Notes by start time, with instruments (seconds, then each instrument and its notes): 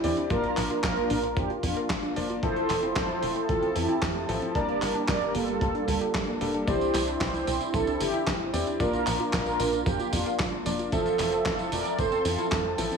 Already playing: analog synth pad C4 D4 E4
0.04 analog synth bass E2, synth arpeggio sound E3, electric grand piano C4 E4 G4 D5, open hi-hat
0.17 synth arpeggio sound D4, closed hi-hat
0.30 analog synth bass A#1, synth arpeggio sound F3, analog synth pad A#3 F4, electric grand piano A#3 D4 F4 D5, analog polysynth F4 A#4, kick, closed hi-hat
0.44 synth arpeggio sound D4, closed hi-hat
0.57 analog synth bass A#1, synth arpeggio sound F3, clap, open hi-hat
0.70 synth arpeggio sound F4, closed hi-hat
0.83 analog synth bass A#1, synth arpeggio sound F3, analog polysynth F4 A#4, kick, snare, clap, closed hi-hat
0.97 synth arpeggio sound A#4, closed hi-hat
1.10 analog synth bass A#1, synth arpeggio sound D4, open hi-hat
1.23 synth arpeggio sound D4, closed hi-hat
1.37 analog synth bass F2, synth arpeggio sound F3, analog polysynth D4 G4, kick, closed hi-hat
1.50 synth arpeggio sound F4, closed hi-hat
1.63 analog synth bass F2, synth arpeggio sound F3, analog polysynth D4 F4, kick, open hi-hat
1.76 synth arpeggio sound A#4, closed hi-hat
1.90 analog synth bass F1, synth arpeggio sound F3, kick, snare, clap, closed hi-hat
2.03 synth arpeggio sound D4, closed hi-hat
2.16 analog synth bass F1, synth arpeggio sound F3, electric grand piano A#3 D4 F4 D5, open hi-hat
2.30 synth arpeggio sound F4, closed hi-hat
2.43 analog synth bass F1, synth arpeggio sound E3, electric grand piano F3 C4 E4 A4, analog synth pad F3 C4 E4 A5, analog polysynth A4 C5, kick, closed hi-hat
2.56 synth arpeggio sound A3, closed hi-hat
2.69 analog synth bass F1, synth arpeggio sound E3, clap, open hi-hat
2.83 synth arpeggio sound C4, closed hi-hat
2.96 analog synth bass F1, synth arpeggio sound E3, analog polysynth A4 C5, kick, snare, clap, closed hi-hat
3.09 synth arpeggio sound E4, closed hi-hat
3.23 analog synth bass F1, synth arpeggio sound A3, open hi-hat
3.36 synth arpeggio sound A3, closed hi-hat
3.49 analog synth bass F1, synth arpeggio sound E3, analog polysynth F4 A4, kick, closed hi-hat
3.62 synth arpeggio sound C4, closed hi-hat
3.76 analog synth bass F2, synth arpeggio sound E3, analog polysynth E4 G4, open hi-hat
3.89 synth arpeggio sound E4, closed hi-hat
4.02 analog synth bass F2, synth arpeggio sound E3, kick, snare, clap, closed hi-hat
4.15 synth arpeggio sound A3, closed hi-hat
4.29 analog synth bass A1, synth arpeggio sound E3, electric grand piano F3 C4 E4 A4, open hi-hat
4.42 synth arpeggio sound C4, closed hi-hat
4.55 analog synth bass G1, analog synth pad G3 A#3 D4, electric grand piano G3 A#3 D4 A5, synth arpeggio sound G3, analog polysynth A#4 D5, kick, closed hi-hat
4.69 synth arpeggio sound A#3, closed hi-hat
4.82 analog synth bass G1, synth arpeggio sound G3, clap, open hi-hat
4.95 synth arpeggio sound D4, closed hi-hat
5.08 analog synth bass G1, synth arpeggio sound G3, analog polysynth A#4 D5, kick, snare, clap, closed hi-hat
5.22 synth arpeggio sound G4, closed hi-hat
5.35 analog synth bass G1, synth arpeggio sound A#3, analog polysynth F4 A4, open hi-hat
5.48 synth arpeggio sound A#3, closed hi-hat
5.61 analog synth bass D2, synth arpeggio sound G3, kick, closed hi-hat
5.75 synth arpeggio sound D4, closed hi-hat
5.88 analog synth bass D2, synth arpeggio sound G3, kick, open hi-hat
6.01 synth arpeggio sound G4, closed hi-hat
6.14 analog synth bass F1, synth arpeggio sound G3, kick, snare, clap, closed hi-hat
6.28 synth arpeggio sound A#3, closed hi-hat
6.41 analog synth bass F1, electric grand piano G3 A#3 D4 A4, synth arpeggio sound G3, open hi-hat
6.54 synth arpeggio sound D4, closed hi-hat
6.68 analog synth bass C2, synth arpeggio sound E3, electric grand piano C4 E4 G4 D5, analog synth pad C4 E4, analog polysynth G4 C5, kick, closed hi-hat, tambourine
6.81 synth arpeggio sound C4, closed hi-hat, tambourine
6.94 analog synth bass C2, synth arpeggio sound E3, clap, open hi-hat, tambourine
7.08 synth arpeggio sound D4, closed hi-hat, tambourine
7.21 analog synth bass C2, synth arpeggio sound E3, analog polysynth G4 C5, kick, snare, clap, closed hi-hat, tambourine
7.34 synth arpeggio sound E4, closed hi-hat, tambourine
7.47 analog synth bass C2, synth arpeggio sound C4, open hi-hat, tambourine
7.61 synth arpeggio sound C4, closed hi-hat, tambourine
7.74 analog synth bass C2, synth arpeggio sound E3, analog polysynth E4 A4, kick, closed hi-hat, tambourine
7.87 synth arpeggio sound D4, closed hi-hat, tambourine
8.00 analog synth bass G1, synth arpeggio sound E3, analog polysynth E4 G4, open hi-hat, tambourine
8.14 synth arpeggio sound E4, closed hi-hat, tambourine
8.27 analog synth bass G1, synth arpeggio sound E3, kick, snare, clap, closed hi-hat, tambourine
8.40 synth arpeggio sound C4, closed hi-hat
8.53 analog synth bass E2, synth arpeggio sound E3, electric grand piano C4 E4 G4 D5, open hi-hat, tambourine
8.67 synth arpeggio sound D4, closed hi-hat, tambourine
8.80 analog synth bass A#1, synth arpeggio sound F3, electric grand piano A#3 D4 F4 D5, analog synth pad A#3 D4 F4, analog polysynth F4 A#4, kick, closed hi-hat, tambourine
8.93 synth arpeggio sound D4, closed hi-hat, tambourine
9.07 analog synth bass A#1, synth arpeggio sound F3, clap, open hi-hat, tambourine
9.20 synth arpeggio sound F4, closed hi-hat, tambourine
9.33 analog synth bass A#1, synth arpeggio sound F3, analog polysynth F4 A#4, kick, snare, clap, closed hi-hat, tambourine
9.46 synth arpeggio sound A#4, closed hi-hat, tambourine
9.60 analog synth bass A#1, synth arpeggio sound D4, open hi-hat, tambourine
9.73 synth arpeggio sound D4, closed hi-hat, tambourine
9.86 analog synth bass F2, synth arpeggio sound F3, analog polysynth D4 G4, kick, closed hi-hat, tambourine
10.00 synth arpeggio sound F4, closed hi-hat, tambourine
10.13 analog synth bass F2, synth arpeggio sound F3, analog polysynth D4 F4, kick, open hi-hat, tambourine
10.26 synth arpeggio sound A#4, closed hi-hat, tambourine
10.39 analog synth bass F1, synth arpeggio sound F3, kick, snare, clap, closed hi-hat, tambourine
10.53 synth arpeggio sound D4, closed hi-hat
10.65 analog synth bass F1, synth arpeggio sound F3, electric grand piano A#3 D4 F4 D5, open hi-hat, tambourine
10.79 synth arpeggio sound F4, closed hi-hat, tambourine
10.92 analog synth bass F1, synth arpeggio sound E3, analog synth pad F3 C4 E5 A5, electric grand piano F3 C4 A4 E5, analog polysynth F4 A4, kick, closed hi-hat, tambourine
11.06 synth arpeggio sound A3, closed hi-hat, tambourine
11.19 analog synth bass F1, synth arpeggio sound E3, clap, open hi-hat, tambourine
11.32 synth arpeggio sound C4, closed hi-hat, tambourine
11.45 analog synth bass F1, synth arpeggio sound E3, analog polysynth F4 A4, kick, snare, clap, closed hi-hat, tambourine
11.59 synth arpeggio sound E4, closed hi-hat, tambourine
11.72 analog synth bass F1, synth arpeggio sound A3, analog polysynth A#4 D5, open hi-hat, tambourine
11.85 synth arpeggio sound A3, closed hi-hat, tambourine
11.98 analog synth bass F1, synth arpeggio sound E3, analog polysynth A4 C5, kick, closed hi-hat, tambourine
12.12 synth arpeggio sound C4, closed hi-hat, tambourine
12.25 analog synth bass F2, synth arpeggio sound E3, analog polysynth F4 A4, open hi-hat, tambourine
12.39 synth arpeggio sound E4, closed hi-hat, tambourine
12.52 analog synth bass F2, synth arpeggio sound E3, kick, snare, clap, closed hi-hat, tambourine
12.65 synth arpeggio sound A3, closed hi-hat
12.78 analog synth bass A1, synth arpeggio sound E3, electric grand piano F3 C4 E4 A4, open hi-hat, tambourine
12.92 synth arpeggio sound C4, closed hi-hat, tambourine